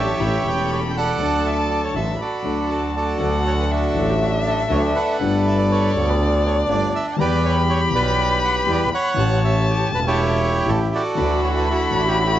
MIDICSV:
0, 0, Header, 1, 6, 480
1, 0, Start_track
1, 0, Key_signature, 2, "major"
1, 0, Tempo, 499168
1, 1150, Time_signature, 4, 2, 24, 8
1, 11917, End_track
2, 0, Start_track
2, 0, Title_t, "Violin"
2, 0, Program_c, 0, 40
2, 0, Note_on_c, 0, 81, 94
2, 192, Note_on_c, 0, 83, 92
2, 206, Note_off_c, 0, 81, 0
2, 1154, Note_on_c, 0, 81, 90
2, 1168, Note_off_c, 0, 83, 0
2, 2094, Note_off_c, 0, 81, 0
2, 2100, Note_on_c, 0, 83, 76
2, 2596, Note_on_c, 0, 81, 74
2, 2610, Note_off_c, 0, 83, 0
2, 3081, Note_off_c, 0, 81, 0
2, 3089, Note_on_c, 0, 78, 100
2, 3572, Note_on_c, 0, 76, 111
2, 3586, Note_off_c, 0, 78, 0
2, 5011, Note_on_c, 0, 74, 117
2, 5026, Note_off_c, 0, 76, 0
2, 6915, Note_on_c, 0, 83, 127
2, 6930, Note_off_c, 0, 74, 0
2, 8805, Note_off_c, 0, 83, 0
2, 8811, Note_on_c, 0, 81, 109
2, 10461, Note_off_c, 0, 81, 0
2, 10737, Note_on_c, 0, 83, 127
2, 11917, Note_off_c, 0, 83, 0
2, 11917, End_track
3, 0, Start_track
3, 0, Title_t, "Bandoneon"
3, 0, Program_c, 1, 23
3, 0, Note_on_c, 1, 67, 75
3, 0, Note_on_c, 1, 73, 81
3, 0, Note_on_c, 1, 76, 103
3, 455, Note_off_c, 1, 76, 0
3, 455, Note_on_c, 1, 79, 90
3, 667, Note_off_c, 1, 79, 0
3, 682, Note_off_c, 1, 73, 0
3, 696, Note_on_c, 1, 73, 94
3, 768, Note_off_c, 1, 73, 0
3, 871, Note_on_c, 1, 79, 62
3, 883, Note_off_c, 1, 67, 0
3, 924, Note_off_c, 1, 79, 0
3, 930, Note_on_c, 1, 78, 103
3, 941, Note_on_c, 1, 74, 74
3, 943, Note_on_c, 1, 69, 70
3, 1405, Note_on_c, 1, 76, 89
3, 1414, Note_off_c, 1, 78, 0
3, 1509, Note_off_c, 1, 76, 0
3, 1624, Note_off_c, 1, 74, 0
3, 1638, Note_on_c, 1, 74, 89
3, 1745, Note_off_c, 1, 74, 0
3, 1765, Note_on_c, 1, 73, 81
3, 1847, Note_off_c, 1, 69, 0
3, 1869, Note_off_c, 1, 73, 0
3, 1881, Note_on_c, 1, 76, 95
3, 2123, Note_off_c, 1, 76, 0
3, 2124, Note_on_c, 1, 74, 70
3, 2131, Note_on_c, 1, 66, 59
3, 2134, Note_on_c, 1, 69, 61
3, 2592, Note_off_c, 1, 69, 0
3, 2607, Note_on_c, 1, 69, 79
3, 2714, Note_off_c, 1, 69, 0
3, 2808, Note_off_c, 1, 74, 0
3, 2839, Note_off_c, 1, 66, 0
3, 2847, Note_on_c, 1, 74, 83
3, 2853, Note_on_c, 1, 66, 59
3, 2855, Note_on_c, 1, 69, 59
3, 3293, Note_off_c, 1, 74, 0
3, 3336, Note_on_c, 1, 73, 96
3, 3387, Note_off_c, 1, 73, 0
3, 3459, Note_on_c, 1, 71, 81
3, 3510, Note_off_c, 1, 71, 0
3, 3561, Note_off_c, 1, 69, 0
3, 3567, Note_off_c, 1, 66, 0
3, 3575, Note_on_c, 1, 69, 89
3, 3579, Note_on_c, 1, 62, 61
3, 3581, Note_on_c, 1, 66, 62
3, 3931, Note_on_c, 1, 67, 81
3, 3942, Note_off_c, 1, 69, 0
3, 3984, Note_off_c, 1, 67, 0
3, 4035, Note_off_c, 1, 66, 0
3, 4041, Note_off_c, 1, 62, 0
3, 4049, Note_on_c, 1, 66, 76
3, 4056, Note_on_c, 1, 57, 52
3, 4056, Note_on_c, 1, 62, 55
3, 4156, Note_off_c, 1, 66, 0
3, 4288, Note_on_c, 1, 69, 88
3, 4531, Note_on_c, 1, 73, 99
3, 4533, Note_off_c, 1, 69, 0
3, 4637, Note_off_c, 1, 73, 0
3, 4767, Note_on_c, 1, 78, 92
3, 4770, Note_on_c, 1, 71, 81
3, 4774, Note_on_c, 1, 69, 79
3, 4971, Note_off_c, 1, 57, 0
3, 4971, Note_off_c, 1, 62, 0
3, 5211, Note_off_c, 1, 78, 0
3, 5256, Note_on_c, 1, 76, 93
3, 5361, Note_off_c, 1, 76, 0
3, 5374, Note_on_c, 1, 74, 93
3, 5480, Note_off_c, 1, 74, 0
3, 5494, Note_off_c, 1, 69, 0
3, 5497, Note_on_c, 1, 73, 97
3, 5509, Note_on_c, 1, 69, 69
3, 5685, Note_off_c, 1, 71, 0
3, 5851, Note_on_c, 1, 71, 83
3, 5858, Note_off_c, 1, 73, 0
3, 5903, Note_off_c, 1, 71, 0
3, 5962, Note_off_c, 1, 69, 0
3, 5977, Note_on_c, 1, 69, 79
3, 5984, Note_on_c, 1, 62, 61
3, 6191, Note_off_c, 1, 69, 0
3, 6214, Note_on_c, 1, 73, 87
3, 6318, Note_off_c, 1, 73, 0
3, 6450, Note_on_c, 1, 74, 105
3, 6665, Note_off_c, 1, 74, 0
3, 6689, Note_on_c, 1, 76, 98
3, 6793, Note_off_c, 1, 76, 0
3, 6886, Note_off_c, 1, 62, 0
3, 6927, Note_on_c, 1, 67, 86
3, 6927, Note_on_c, 1, 74, 107
3, 6930, Note_on_c, 1, 71, 78
3, 7165, Note_off_c, 1, 74, 0
3, 7167, Note_on_c, 1, 73, 95
3, 7265, Note_off_c, 1, 71, 0
3, 7280, Note_on_c, 1, 71, 94
3, 7281, Note_off_c, 1, 73, 0
3, 7331, Note_off_c, 1, 71, 0
3, 7401, Note_on_c, 1, 73, 104
3, 7506, Note_off_c, 1, 73, 0
3, 7632, Note_off_c, 1, 67, 0
3, 7644, Note_on_c, 1, 74, 105
3, 7646, Note_on_c, 1, 67, 92
3, 7649, Note_on_c, 1, 71, 86
3, 8081, Note_off_c, 1, 74, 0
3, 8122, Note_on_c, 1, 78, 100
3, 8225, Note_off_c, 1, 78, 0
3, 8372, Note_on_c, 1, 74, 103
3, 8473, Note_off_c, 1, 74, 0
3, 8552, Note_off_c, 1, 67, 0
3, 8554, Note_off_c, 1, 71, 0
3, 8600, Note_on_c, 1, 78, 111
3, 8603, Note_on_c, 1, 73, 80
3, 9036, Note_off_c, 1, 78, 0
3, 9084, Note_on_c, 1, 76, 100
3, 9296, Note_off_c, 1, 76, 0
3, 9323, Note_on_c, 1, 67, 88
3, 9511, Note_off_c, 1, 73, 0
3, 9535, Note_off_c, 1, 67, 0
3, 9565, Note_on_c, 1, 71, 102
3, 9613, Note_off_c, 1, 71, 0
3, 9686, Note_on_c, 1, 67, 79
3, 9687, Note_on_c, 1, 73, 115
3, 9689, Note_on_c, 1, 64, 76
3, 10276, Note_on_c, 1, 69, 99
3, 10294, Note_off_c, 1, 73, 0
3, 10382, Note_off_c, 1, 69, 0
3, 10528, Note_on_c, 1, 74, 97
3, 10529, Note_on_c, 1, 66, 75
3, 10530, Note_on_c, 1, 69, 68
3, 10601, Note_off_c, 1, 67, 0
3, 10602, Note_off_c, 1, 64, 0
3, 10967, Note_off_c, 1, 74, 0
3, 11001, Note_on_c, 1, 73, 86
3, 11053, Note_off_c, 1, 73, 0
3, 11129, Note_on_c, 1, 71, 89
3, 11239, Note_off_c, 1, 66, 0
3, 11240, Note_off_c, 1, 69, 0
3, 11244, Note_off_c, 1, 71, 0
3, 11251, Note_on_c, 1, 64, 68
3, 11254, Note_on_c, 1, 66, 70
3, 11254, Note_on_c, 1, 69, 90
3, 11582, Note_off_c, 1, 69, 0
3, 11614, Note_on_c, 1, 67, 93
3, 11723, Note_off_c, 1, 66, 0
3, 11729, Note_off_c, 1, 67, 0
3, 11737, Note_on_c, 1, 57, 59
3, 11737, Note_on_c, 1, 66, 80
3, 11760, Note_off_c, 1, 66, 0
3, 11789, Note_on_c, 1, 67, 77
3, 11843, Note_off_c, 1, 67, 0
3, 11847, Note_on_c, 1, 66, 96
3, 11917, Note_off_c, 1, 57, 0
3, 11917, Note_off_c, 1, 64, 0
3, 11917, Note_off_c, 1, 66, 0
3, 11917, End_track
4, 0, Start_track
4, 0, Title_t, "String section"
4, 0, Program_c, 2, 48
4, 0, Note_on_c, 2, 62, 76
4, 0, Note_on_c, 2, 66, 61
4, 0, Note_on_c, 2, 69, 85
4, 154, Note_off_c, 2, 62, 0
4, 156, Note_off_c, 2, 66, 0
4, 157, Note_off_c, 2, 69, 0
4, 193, Note_on_c, 2, 61, 73
4, 193, Note_on_c, 2, 67, 70
4, 196, Note_on_c, 2, 69, 82
4, 394, Note_off_c, 2, 61, 0
4, 394, Note_off_c, 2, 67, 0
4, 396, Note_off_c, 2, 69, 0
4, 432, Note_on_c, 2, 61, 74
4, 434, Note_on_c, 2, 67, 71
4, 435, Note_on_c, 2, 69, 87
4, 1113, Note_off_c, 2, 61, 0
4, 1114, Note_off_c, 2, 67, 0
4, 1115, Note_off_c, 2, 69, 0
4, 1150, Note_on_c, 2, 62, 82
4, 1151, Note_on_c, 2, 66, 73
4, 1154, Note_on_c, 2, 69, 93
4, 1833, Note_off_c, 2, 62, 0
4, 1834, Note_off_c, 2, 66, 0
4, 1835, Note_off_c, 2, 69, 0
4, 1864, Note_on_c, 2, 62, 66
4, 1866, Note_on_c, 2, 66, 62
4, 1867, Note_on_c, 2, 69, 70
4, 2069, Note_off_c, 2, 62, 0
4, 2070, Note_off_c, 2, 66, 0
4, 2071, Note_off_c, 2, 69, 0
4, 2349, Note_on_c, 2, 62, 73
4, 2352, Note_on_c, 2, 66, 68
4, 2353, Note_on_c, 2, 69, 80
4, 3043, Note_off_c, 2, 62, 0
4, 3045, Note_off_c, 2, 66, 0
4, 3045, Note_off_c, 2, 69, 0
4, 10738, Note_on_c, 2, 62, 92
4, 10741, Note_on_c, 2, 64, 90
4, 10744, Note_on_c, 2, 66, 92
4, 11433, Note_off_c, 2, 62, 0
4, 11435, Note_off_c, 2, 64, 0
4, 11436, Note_off_c, 2, 66, 0
4, 11465, Note_on_c, 2, 62, 86
4, 11468, Note_on_c, 2, 64, 70
4, 11470, Note_on_c, 2, 66, 90
4, 11917, Note_off_c, 2, 62, 0
4, 11917, Note_off_c, 2, 64, 0
4, 11917, Note_off_c, 2, 66, 0
4, 11917, End_track
5, 0, Start_track
5, 0, Title_t, "Grand piano"
5, 0, Program_c, 3, 0
5, 0, Note_on_c, 3, 33, 73
5, 0, Note_on_c, 3, 45, 70
5, 0, Note_on_c, 3, 54, 57
5, 0, Note_on_c, 3, 57, 61
5, 0, Note_on_c, 3, 62, 53
5, 0, Note_on_c, 3, 69, 58
5, 155, Note_off_c, 3, 33, 0
5, 155, Note_off_c, 3, 54, 0
5, 156, Note_off_c, 3, 45, 0
5, 156, Note_off_c, 3, 57, 0
5, 157, Note_off_c, 3, 62, 0
5, 157, Note_off_c, 3, 69, 0
5, 192, Note_on_c, 3, 52, 62
5, 193, Note_on_c, 3, 45, 84
5, 194, Note_on_c, 3, 57, 66
5, 198, Note_on_c, 3, 33, 88
5, 198, Note_on_c, 3, 61, 62
5, 198, Note_on_c, 3, 67, 76
5, 393, Note_off_c, 3, 52, 0
5, 394, Note_off_c, 3, 45, 0
5, 395, Note_off_c, 3, 57, 0
5, 397, Note_off_c, 3, 33, 0
5, 397, Note_off_c, 3, 61, 0
5, 397, Note_off_c, 3, 67, 0
5, 412, Note_on_c, 3, 52, 65
5, 426, Note_on_c, 3, 57, 63
5, 430, Note_on_c, 3, 40, 87
5, 431, Note_on_c, 3, 28, 80
5, 436, Note_on_c, 3, 61, 62
5, 450, Note_on_c, 3, 67, 73
5, 1103, Note_off_c, 3, 52, 0
5, 1111, Note_off_c, 3, 57, 0
5, 1112, Note_off_c, 3, 40, 0
5, 1113, Note_off_c, 3, 28, 0
5, 1115, Note_off_c, 3, 61, 0
5, 1122, Note_off_c, 3, 67, 0
5, 1128, Note_on_c, 3, 54, 76
5, 1146, Note_on_c, 3, 57, 68
5, 1150, Note_on_c, 3, 38, 93
5, 1152, Note_on_c, 3, 50, 88
5, 1156, Note_on_c, 3, 62, 70
5, 1169, Note_on_c, 3, 69, 85
5, 1822, Note_off_c, 3, 54, 0
5, 1831, Note_off_c, 3, 57, 0
5, 1833, Note_off_c, 3, 38, 0
5, 1834, Note_off_c, 3, 50, 0
5, 1836, Note_off_c, 3, 62, 0
5, 1843, Note_off_c, 3, 69, 0
5, 1861, Note_on_c, 3, 54, 54
5, 1861, Note_on_c, 3, 57, 51
5, 1866, Note_on_c, 3, 33, 67
5, 1866, Note_on_c, 3, 45, 65
5, 1866, Note_on_c, 3, 62, 57
5, 2068, Note_off_c, 3, 54, 0
5, 2068, Note_off_c, 3, 57, 0
5, 2070, Note_off_c, 3, 33, 0
5, 2070, Note_off_c, 3, 45, 0
5, 2070, Note_off_c, 3, 62, 0
5, 2332, Note_on_c, 3, 54, 59
5, 2344, Note_on_c, 3, 57, 60
5, 2350, Note_on_c, 3, 38, 77
5, 2351, Note_on_c, 3, 50, 85
5, 2361, Note_on_c, 3, 62, 63
5, 2371, Note_on_c, 3, 69, 68
5, 3035, Note_off_c, 3, 54, 0
5, 3041, Note_off_c, 3, 57, 0
5, 3044, Note_off_c, 3, 38, 0
5, 3044, Note_off_c, 3, 50, 0
5, 3050, Note_off_c, 3, 62, 0
5, 3055, Note_off_c, 3, 69, 0
5, 3057, Note_on_c, 3, 54, 76
5, 3069, Note_on_c, 3, 57, 72
5, 3076, Note_on_c, 3, 38, 104
5, 3079, Note_on_c, 3, 50, 95
5, 3083, Note_on_c, 3, 62, 73
5, 3097, Note_on_c, 3, 69, 91
5, 3757, Note_off_c, 3, 54, 0
5, 3763, Note_off_c, 3, 57, 0
5, 3767, Note_off_c, 3, 38, 0
5, 3768, Note_off_c, 3, 50, 0
5, 3770, Note_off_c, 3, 62, 0
5, 3777, Note_off_c, 3, 69, 0
5, 3790, Note_on_c, 3, 54, 60
5, 3803, Note_on_c, 3, 57, 57
5, 3808, Note_on_c, 3, 45, 84
5, 3810, Note_on_c, 3, 33, 74
5, 3813, Note_on_c, 3, 62, 62
5, 3826, Note_on_c, 3, 69, 81
5, 4482, Note_off_c, 3, 54, 0
5, 4488, Note_off_c, 3, 57, 0
5, 4490, Note_off_c, 3, 45, 0
5, 4492, Note_off_c, 3, 33, 0
5, 4493, Note_off_c, 3, 62, 0
5, 4500, Note_off_c, 3, 69, 0
5, 4520, Note_on_c, 3, 54, 83
5, 4520, Note_on_c, 3, 57, 65
5, 4522, Note_on_c, 3, 50, 88
5, 4523, Note_on_c, 3, 38, 88
5, 4525, Note_on_c, 3, 62, 73
5, 4527, Note_on_c, 3, 69, 88
5, 4723, Note_off_c, 3, 54, 0
5, 4724, Note_off_c, 3, 57, 0
5, 4725, Note_off_c, 3, 38, 0
5, 4725, Note_off_c, 3, 50, 0
5, 4726, Note_off_c, 3, 62, 0
5, 4727, Note_off_c, 3, 69, 0
5, 4984, Note_on_c, 3, 50, 81
5, 4996, Note_on_c, 3, 57, 71
5, 5001, Note_on_c, 3, 31, 93
5, 5005, Note_on_c, 3, 43, 109
5, 5006, Note_on_c, 3, 59, 78
5, 5021, Note_on_c, 3, 67, 94
5, 5675, Note_off_c, 3, 50, 0
5, 5681, Note_off_c, 3, 57, 0
5, 5684, Note_off_c, 3, 31, 0
5, 5686, Note_off_c, 3, 43, 0
5, 5686, Note_off_c, 3, 59, 0
5, 5694, Note_off_c, 3, 67, 0
5, 5694, Note_on_c, 3, 50, 64
5, 5708, Note_off_c, 3, 50, 0
5, 5709, Note_on_c, 3, 57, 59
5, 5717, Note_on_c, 3, 38, 82
5, 5717, Note_on_c, 3, 50, 85
5, 5720, Note_on_c, 3, 59, 62
5, 5731, Note_on_c, 3, 67, 75
5, 6395, Note_off_c, 3, 57, 0
5, 6399, Note_off_c, 3, 38, 0
5, 6399, Note_off_c, 3, 50, 0
5, 6401, Note_off_c, 3, 59, 0
5, 6406, Note_off_c, 3, 67, 0
5, 6429, Note_on_c, 3, 50, 83
5, 6429, Note_on_c, 3, 57, 82
5, 6429, Note_on_c, 3, 59, 74
5, 6431, Note_on_c, 3, 31, 102
5, 6432, Note_on_c, 3, 43, 99
5, 6432, Note_on_c, 3, 67, 84
5, 6632, Note_off_c, 3, 57, 0
5, 6633, Note_off_c, 3, 31, 0
5, 6633, Note_off_c, 3, 50, 0
5, 6633, Note_off_c, 3, 59, 0
5, 6634, Note_off_c, 3, 43, 0
5, 6634, Note_off_c, 3, 67, 0
5, 6889, Note_on_c, 3, 52, 92
5, 6903, Note_off_c, 3, 52, 0
5, 6903, Note_on_c, 3, 55, 88
5, 6910, Note_on_c, 3, 40, 105
5, 6913, Note_on_c, 3, 52, 99
5, 6916, Note_on_c, 3, 59, 91
5, 6929, Note_on_c, 3, 67, 98
5, 7587, Note_off_c, 3, 55, 0
5, 7590, Note_off_c, 3, 40, 0
5, 7592, Note_off_c, 3, 52, 0
5, 7593, Note_off_c, 3, 59, 0
5, 7600, Note_off_c, 3, 67, 0
5, 7607, Note_on_c, 3, 52, 78
5, 7618, Note_on_c, 3, 55, 55
5, 7621, Note_on_c, 3, 47, 72
5, 7623, Note_on_c, 3, 35, 83
5, 7632, Note_on_c, 3, 59, 66
5, 7641, Note_on_c, 3, 67, 70
5, 8297, Note_off_c, 3, 52, 0
5, 8302, Note_off_c, 3, 55, 0
5, 8304, Note_off_c, 3, 47, 0
5, 8305, Note_off_c, 3, 35, 0
5, 8310, Note_off_c, 3, 59, 0
5, 8314, Note_off_c, 3, 67, 0
5, 8332, Note_on_c, 3, 52, 84
5, 8336, Note_on_c, 3, 55, 73
5, 8338, Note_on_c, 3, 40, 87
5, 8340, Note_on_c, 3, 59, 72
5, 8340, Note_on_c, 3, 67, 80
5, 8540, Note_off_c, 3, 55, 0
5, 8541, Note_off_c, 3, 40, 0
5, 8541, Note_off_c, 3, 52, 0
5, 8542, Note_off_c, 3, 59, 0
5, 8542, Note_off_c, 3, 67, 0
5, 8791, Note_on_c, 3, 52, 83
5, 8806, Note_on_c, 3, 57, 81
5, 8811, Note_on_c, 3, 45, 100
5, 8813, Note_on_c, 3, 33, 106
5, 8818, Note_on_c, 3, 61, 79
5, 8830, Note_on_c, 3, 67, 95
5, 9488, Note_off_c, 3, 52, 0
5, 9496, Note_off_c, 3, 57, 0
5, 9498, Note_off_c, 3, 45, 0
5, 9499, Note_off_c, 3, 33, 0
5, 9502, Note_off_c, 3, 61, 0
5, 9508, Note_off_c, 3, 67, 0
5, 9518, Note_on_c, 3, 52, 65
5, 9531, Note_on_c, 3, 57, 60
5, 9536, Note_on_c, 3, 40, 80
5, 9538, Note_on_c, 3, 28, 74
5, 9541, Note_on_c, 3, 61, 57
5, 9557, Note_on_c, 3, 67, 66
5, 10215, Note_off_c, 3, 52, 0
5, 10221, Note_off_c, 3, 57, 0
5, 10224, Note_off_c, 3, 40, 0
5, 10225, Note_off_c, 3, 28, 0
5, 10226, Note_off_c, 3, 61, 0
5, 10235, Note_off_c, 3, 67, 0
5, 10252, Note_on_c, 3, 57, 68
5, 10253, Note_on_c, 3, 52, 72
5, 10255, Note_on_c, 3, 33, 85
5, 10256, Note_on_c, 3, 45, 94
5, 10256, Note_on_c, 3, 61, 65
5, 10257, Note_on_c, 3, 67, 89
5, 10461, Note_off_c, 3, 57, 0
5, 10462, Note_off_c, 3, 33, 0
5, 10462, Note_off_c, 3, 52, 0
5, 10463, Note_off_c, 3, 45, 0
5, 10463, Note_off_c, 3, 61, 0
5, 10463, Note_off_c, 3, 67, 0
5, 10722, Note_on_c, 3, 52, 81
5, 10736, Note_on_c, 3, 57, 76
5, 10742, Note_on_c, 3, 38, 99
5, 10742, Note_on_c, 3, 50, 91
5, 10752, Note_on_c, 3, 62, 73
5, 10760, Note_on_c, 3, 66, 92
5, 11426, Note_off_c, 3, 52, 0
5, 11433, Note_off_c, 3, 57, 0
5, 11435, Note_off_c, 3, 38, 0
5, 11435, Note_off_c, 3, 50, 0
5, 11440, Note_off_c, 3, 62, 0
5, 11444, Note_off_c, 3, 66, 0
5, 11450, Note_on_c, 3, 52, 60
5, 11463, Note_on_c, 3, 57, 64
5, 11467, Note_on_c, 3, 33, 79
5, 11467, Note_on_c, 3, 45, 84
5, 11475, Note_on_c, 3, 62, 59
5, 11488, Note_on_c, 3, 66, 66
5, 11917, Note_off_c, 3, 33, 0
5, 11917, Note_off_c, 3, 45, 0
5, 11917, Note_off_c, 3, 52, 0
5, 11917, Note_off_c, 3, 57, 0
5, 11917, Note_off_c, 3, 62, 0
5, 11917, Note_off_c, 3, 66, 0
5, 11917, End_track
6, 0, Start_track
6, 0, Title_t, "Double bass"
6, 0, Program_c, 4, 43
6, 0, Note_on_c, 4, 33, 100
6, 156, Note_off_c, 4, 33, 0
6, 193, Note_on_c, 4, 33, 90
6, 394, Note_off_c, 4, 33, 0
6, 433, Note_on_c, 4, 28, 84
6, 1114, Note_off_c, 4, 28, 0
6, 1149, Note_on_c, 4, 38, 89
6, 1833, Note_off_c, 4, 38, 0
6, 1870, Note_on_c, 4, 33, 99
6, 2072, Note_off_c, 4, 33, 0
6, 2353, Note_on_c, 4, 38, 82
6, 3045, Note_off_c, 4, 38, 0
6, 3085, Note_on_c, 4, 38, 104
6, 3771, Note_off_c, 4, 38, 0
6, 3806, Note_on_c, 4, 33, 118
6, 4490, Note_off_c, 4, 33, 0
6, 4526, Note_on_c, 4, 38, 110
6, 4727, Note_off_c, 4, 38, 0
6, 5004, Note_on_c, 4, 31, 107
6, 5685, Note_off_c, 4, 31, 0
6, 5722, Note_on_c, 4, 38, 127
6, 6402, Note_off_c, 4, 38, 0
6, 6431, Note_on_c, 4, 31, 110
6, 6634, Note_off_c, 4, 31, 0
6, 6911, Note_on_c, 4, 40, 114
6, 7591, Note_off_c, 4, 40, 0
6, 7624, Note_on_c, 4, 35, 110
6, 8306, Note_off_c, 4, 35, 0
6, 8341, Note_on_c, 4, 40, 101
6, 8542, Note_off_c, 4, 40, 0
6, 8814, Note_on_c, 4, 33, 110
6, 9500, Note_off_c, 4, 33, 0
6, 9533, Note_on_c, 4, 28, 118
6, 10223, Note_off_c, 4, 28, 0
6, 10255, Note_on_c, 4, 33, 97
6, 10462, Note_off_c, 4, 33, 0
6, 10747, Note_on_c, 4, 38, 106
6, 11438, Note_off_c, 4, 38, 0
6, 11472, Note_on_c, 4, 33, 108
6, 11917, Note_off_c, 4, 33, 0
6, 11917, End_track
0, 0, End_of_file